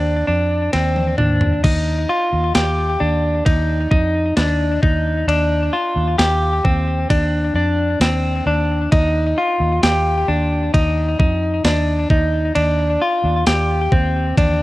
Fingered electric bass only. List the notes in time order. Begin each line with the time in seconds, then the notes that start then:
Already playing: D#2
0.28 F2
0.74 D#2
1.19 D#2
1.64 D#2
2.33 D#2
2.55 D#2
3.01 D#2
3.47 D#2
3.92 F2
4.37 D#2
4.83 D#2
5.27 D#2
5.96 D#2
6.19 D#2
6.65 D#2
7.10 D#2
7.54 F2
8.00 D#2
8.46 D#2
8.92 D#2
9.60 D#2
9.83 D#2
10.28 D#2
10.74 D#2
11.19 F2
11.64 D#2
12.10 D#2
12.56 D#2
13.24 D#2
13.47 D#2
13.92 D#2
14.37 D#2